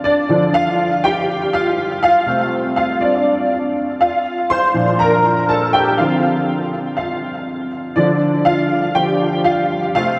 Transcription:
0.04 0.28 D4 medium
0.04 0.56 D5 medium
0.29 1.99 D3 medium
0.29 1.99 F3 medium
0.29 1.99 D4 medium
0.54 1.01 F4 medium
0.54 1.05 F5 loud
1.04 1.51 G4 medium
1.04 1.55 G5 medium
1.53 2.00 F4 medium
1.53 2.01 F5 medium
2.03 2.73 F4 medium
2.03 2.75 F5 medium
2.26 3.96 C3 medium
2.26 3.97 A3 soft
2.26 3.97 C4 medium
2.76 3.00 F4 medium
2.76 3.02 F5 medium
3.01 3.72 D4 medium
3.01 3.72 D5 medium
4.01 4.47 F4 medium
4.01 4.47 F5 medium
4.50 4.97 C5 medium
4.50 4.96 C6 loud
4.74 5.45 A#2 medium
4.74 5.45 F3 soft
4.74 5.46 D4 medium
4.99 5.46 A#4 medium
4.99 5.50 A#5 loud
5.49 5.73 A4 medium
5.49 5.72 A5 medium
5.73 5.97 G4 medium
5.73 5.99 G5 medium
5.98 6.69 D3 medium
5.98 6.70 F3 soft
5.98 6.70 C4 medium
5.98 6.94 F4 medium
5.98 6.95 F5 medium
6.97 7.68 F4 medium
6.97 7.67 F5 medium
7.96 8.94 D3 medium
7.96 8.94 F3 medium
7.96 8.43 D4 medium
7.96 8.47 D5 medium
8.45 8.92 F4 medium
8.45 8.97 F5 medium
8.95 9.18 D3 medium
8.95 9.18 F3 soft
8.95 9.18 D4 medium
8.95 9.42 G4 medium
8.95 9.46 G5 medium
9.44 9.91 F4 medium
9.44 9.93 F5 medium
9.95 10.19 C3 medium
9.95 10.19 A3 soft
9.95 10.19 C4 medium
9.95 10.19 F4 medium
9.95 10.19 F5 loud

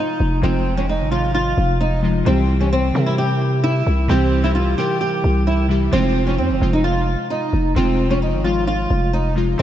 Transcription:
0.00 0.42 C3 loud
0.00 0.42 F3 medium
0.00 0.43 G#3 medium
0.00 0.40 D#4 medium
0.00 0.44 D#4 medium
0.00 0.45 F4 loud
0.20 0.42 F1 loud
0.42 1.02 F1 loud
0.42 0.74 C3 loud
0.42 0.75 F3 medium
0.42 0.75 G#3 medium
0.42 0.76 C4 loud
0.42 0.75 D#4 medium
0.42 0.76 F4 loud
0.76 1.09 C3 medium
0.76 1.09 F3 medium
0.76 1.09 G#3 medium
0.76 0.87 C#4 medium
0.76 1.10 D#4 medium
0.76 1.10 F4 medium
0.89 1.08 D#4 medium
1.00 1.55 G#1 loud
1.10 1.96 C3 medium
1.10 1.96 F3 medium
1.10 1.97 G#3 medium
1.10 1.97 D#4 medium
1.10 1.31 F4 medium
1.10 1.98 F4 medium
1.35 1.78 F4 medium
1.58 2.24 F1 loud
1.81 1.99 D#4 medium
2.02 2.24 C3 medium
2.02 2.24 F3 medium
2.02 2.25 G#3 medium
2.02 2.25 D#4 medium
2.02 2.25 F4 medium
2.25 2.92 C2 loud
2.25 2.57 C3 loud
2.25 2.58 E3 medium
2.25 2.58 G3 medium
2.25 2.59 C4 loud
2.25 2.59 E4 medium
2.25 2.59 G4 loud
2.59 2.92 C3 medium
2.59 2.92 E3 medium
2.59 2.92 G3 medium
2.59 2.70 C#4 medium
2.59 2.93 E4 medium
2.59 2.93 G4 medium
2.73 3.05 C4 medium
2.93 3.79 C3 medium
2.93 3.83 C3 loud
2.93 3.80 E3 medium
2.93 3.80 G3 medium
2.93 3.80 E4 medium
2.93 3.81 A#4 medium
3.06 3.16 E4 medium
3.18 3.61 G4 loud
3.64 4.07 E4 medium
3.87 4.09 C2 loud
4.08 4.76 C2 loud
4.08 4.41 C3 loud
4.08 4.41 E3 medium
4.08 4.41 G3 medium
4.08 4.42 C4 loud
4.08 4.42 E4 medium
4.08 4.42 G4 loud
4.42 4.75 C3 medium
4.42 4.75 E3 medium
4.42 4.76 G3 medium
4.42 4.53 E4 medium
4.42 4.76 E4 medium
4.42 4.76 G4 medium
4.55 4.74 F4 medium
4.77 5.62 C3 medium
4.77 5.63 E3 medium
4.77 5.63 G3 medium
4.77 5.64 E4 medium
4.77 4.97 G4 medium
4.77 5.64 A#4 medium
5.01 5.44 G4 medium
5.24 5.90 C2 loud
5.47 5.66 E4 medium
5.68 5.90 C3 medium
5.68 5.91 E3 medium
5.68 5.91 G3 medium
5.68 5.92 E4 medium
5.68 5.92 G4 medium
5.91 6.40 F1 loud
5.91 6.24 C3 loud
5.91 6.24 F3 medium
5.91 6.25 G#3 medium
5.91 6.25 C4 loud
5.91 6.25 D#4 medium
5.91 6.25 F4 loud
6.26 6.58 C3 medium
6.26 6.59 F3 medium
6.26 6.59 G#3 medium
6.26 6.36 C#4 medium
6.26 6.59 D#4 medium
6.26 6.60 F4 medium
6.38 6.52 F2 loud
6.38 6.71 C4 medium
6.50 6.61 F1 loud
6.60 7.16 F1 loud
6.60 7.46 C3 medium
6.60 7.46 F3 medium
6.60 7.46 G#3 medium
6.60 7.47 D#4 medium
6.60 7.47 F4 medium
6.73 6.83 D#4 medium
6.84 7.27 F4 medium
7.30 7.73 D#4 loud
7.53 7.75 F1 loud
7.75 8.35 F1 loud
7.75 8.07 C3 loud
7.75 8.07 F3 medium
7.75 8.08 G#3 medium
7.75 8.08 C4 loud
7.75 8.08 D#4 medium
7.75 8.09 F4 loud
8.09 8.41 C3 medium
8.09 8.42 F3 medium
8.09 8.42 G#3 medium
8.09 8.20 C#4 medium
8.09 8.43 D#4 medium
8.09 8.43 F4 medium
8.22 8.41 D#4 medium
8.33 8.88 G#1 loud
8.43 9.29 C3 medium
8.43 9.29 F3 medium
8.43 9.30 G#3 medium
8.43 9.30 D#4 medium
8.43 8.63 F4 medium
8.43 9.30 F4 medium
8.67 9.11 F4 medium
8.90 9.56 F1 loud
9.13 9.32 D#4 medium
9.35 9.56 C3 medium
9.35 9.57 F3 medium
9.35 9.58 G#3 medium
9.35 9.58 D#4 medium
9.35 9.58 F4 medium
9.57 9.62 C3 loud
9.57 9.62 E3 medium
9.57 9.62 G3 medium
9.57 9.62 C4 loud

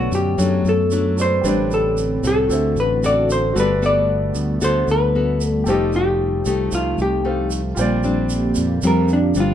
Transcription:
0.00 0.36 B2 soft
0.00 3.51 D3 medium
0.00 0.34 F#3 medium
0.00 1.40 F#3 medium
0.00 0.34 A3 soft
0.00 1.42 A3 medium
0.00 1.42 B3 medium
0.00 0.34 D4 medium
0.00 0.15 F#4 medium
0.00 1.14 A4 soft
0.00 1.15 B4 soft
0.00 1.16 D5 soft
0.00 1.12 F#5 soft
0.11 0.36 F#2 medium
0.11 0.68 G4 medium
0.11 shaker medium
0.38 1.41 F#2 medium
0.38 0.63 F#2 medium
0.38 0.72 F#3 medium
0.38 0.72 A3 soft
0.38 0.73 D4 medium
0.38 shaker medium
0.65 1.40 F#2 medium
0.65 shaker soft
0.69 1.21 A4 medium
0.91 1.26 F#3 soft
0.91 1.26 A3 soft
0.91 1.26 D4 medium
0.91 shaker medium
1.16 1.43 F#4 soft
1.16 1.44 A4 soft
1.16 1.42 B4 soft
1.16 1.45 D5 soft
1.16 shaker medium
1.21 1.74 C5 medium
1.41 2.19 A1 medium
1.41 2.47 A2 medium
1.41 2.19 G3 medium
1.41 2.19 C4 medium
1.41 3.54 C4 medium
1.41 2.20 D4 medium
1.41 2.46 G4 soft
1.41 2.49 G4 medium
1.41 2.47 B4 soft
1.41 2.48 C5 soft
1.41 shaker medium
1.47 2.49 D5 soft
1.71 2.21 A4 medium
1.71 shaker soft
1.97 shaker soft
2.23 2.48 C2 medium
2.23 2.98 C4 medium
2.23 2.99 F#4 medium
2.23 2.99 A4 medium
2.23 shaker medium
2.27 2.80 A4 medium
2.48 2.74 D2 medium
2.48 3.53 D3 soft
2.48 7.74 A3 medium
2.48 3.52 F#4 soft
2.48 3.55 F#4 medium
2.48 3.53 A4 soft
2.48 3.54 C5 soft
2.48 shaker medium
2.53 3.55 E5 soft
2.76 3.51 A1 medium
2.76 3.03 B4 medium
2.76 shaker soft
3.03 3.54 C4 soft
3.03 3.54 F#4 medium
3.03 3.54 A4 medium
3.03 3.29 D5 medium
3.03 shaker soft
3.30 3.58 C5 medium
3.30 shaker medium
3.53 4.31 G1 medium
3.53 4.58 G3 medium
3.53 7.74 G3 medium
3.53 3.71 B3 medium
3.53 5.65 B3 medium
3.53 5.62 F#4 soft
3.53 3.71 F#4 medium
3.53 5.63 A4 soft
3.53 3.71 A4 medium
3.53 shaker medium
3.58 5.64 B4 soft
3.58 3.85 B4 medium
3.58 5.65 D5 medium
3.82 4.57 B3 medium
3.82 4.57 F#4 medium
3.82 4.57 A4 medium
3.82 4.59 D5 loud
3.82 shaker soft
4.35 4.59 D2 medium
4.35 shaker medium
4.61 4.86 D2 medium
4.61 5.64 D3 medium
4.61 4.95 B3 medium
4.61 4.95 F#4 medium
4.61 4.96 A4 medium
4.61 4.90 C5 medium
4.61 shaker medium
4.88 5.63 D2 medium
4.88 5.49 B4 medium
4.88 shaker soft
5.15 5.63 B3 medium
5.15 5.63 F#4 soft
5.15 5.63 A4 medium
5.41 shaker medium
5.49 5.71 A4 medium
5.64 6.42 F1 medium
5.64 6.70 F3 medium
5.64 7.76 F3 medium
5.64 6.42 A3 medium
5.64 7.76 D#4 medium
5.64 7.20 G4 soft
5.64 7.21 A4 soft
5.64 shaker medium
5.68 6.42 D#4 medium
5.68 6.42 G4 medium
5.68 5.95 G4 medium
5.68 7.22 C5 soft
5.68 7.23 D#5 soft
5.93 6.74 G4 medium
5.93 shaker soft
6.46 6.70 C2 medium
6.46 7.21 A3 medium
6.46 7.21 D#4 medium
6.46 7.21 G4 medium
6.46 shaker medium
6.72 6.97 C2 medium
6.72 7.75 C3 medium
6.72 7.01 F4 medium
6.72 shaker medium
6.98 7.74 C2 medium
6.98 7.49 G4 medium
6.98 shaker soft
7.24 7.60 A3 soft
7.24 7.60 D#4 soft
7.24 7.75 G4 soft
7.24 7.61 G4 soft
7.24 7.77 A4 soft
7.24 7.77 C5 soft
7.24 7.79 F5 soft
7.51 shaker medium
7.75 8.53 A#1 medium
7.75 8.81 A#2 medium
7.75 9.54 D3 medium
7.75 9.54 A#3 medium
7.75 9.54 C4 medium
7.75 9.54 F4 medium
7.75 9.54 G4 soft
7.75 9.54 G4 medium
7.75 shaker medium
7.79 8.00 G3 soft
7.79 8.00 C4 medium
7.79 8.01 D4 medium
7.79 9.54 C5 medium
7.79 9.54 D5 medium
8.03 8.79 G3 medium
8.03 8.79 C4 medium
8.03 8.79 D4 medium
8.03 shaker soft
8.30 shaker medium
8.55 8.81 F2 medium
8.55 shaker medium
8.82 9.32 F2 medium
8.82 9.54 F3 medium
8.82 9.17 G3 medium
8.82 9.17 C4 medium
8.82 9.18 D4 medium
8.82 shaker medium
8.87 9.11 A#4 medium
9.08 shaker soft
9.13 9.37 D4 medium
9.35 9.54 G1 medium
9.35 9.54 G3 medium
9.35 9.54 C4 medium
9.35 9.54 D4 medium
9.35 shaker soft
9.40 9.54 F4 medium

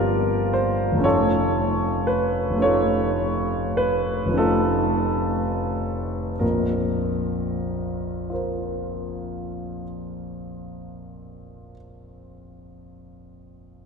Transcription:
0.00 0.94 G1 soft
0.00 0.93 F3 soft
0.00 1.07 A#3 soft
0.00 1.07 C4 soft
0.00 1.07 D4 soft
0.00 0.50 F4 medium
0.00 1.07 G4 medium
0.00 1.05 A4 medium
0.00 0.54 A#4 medium
0.00 0.53 C5 medium
0.00 1.06 D5 medium
0.53 1.04 C5 medium
0.92 2.49 F1 soft
0.92 2.51 F3 soft
0.97 2.54 A3 soft
0.97 2.57 C#4 soft
1.03 2.59 D#4 soft
1.03 2.05 F4 medium
1.03 2.05 A4 medium
1.03 2.08 C#5 medium
2.07 2.63 B4 medium
2.50 4.25 F1 soft
2.50 4.27 F3 soft
2.56 4.30 A3 soft
2.56 4.32 C#4 soft
2.61 4.33 D#4 soft
2.61 3.74 F4 medium
2.61 3.73 A4 medium
2.61 3.77 C#5 medium
3.77 4.38 B4 medium
4.26 6.31 F1 soft
4.26 6.32 F3 soft
4.31 6.34 A3 soft
4.31 6.35 C#4 soft
4.38 6.37 D#4 soft
4.38 6.38 F4 soft
4.38 6.41 A4 medium
6.39 9.81 A#1 soft
6.39 9.82 F2 soft
6.39 8.30 A#4 soft
8.30 11.71 F4 soft
8.30 11.72 A#4 soft
8.34 11.75 C5 soft

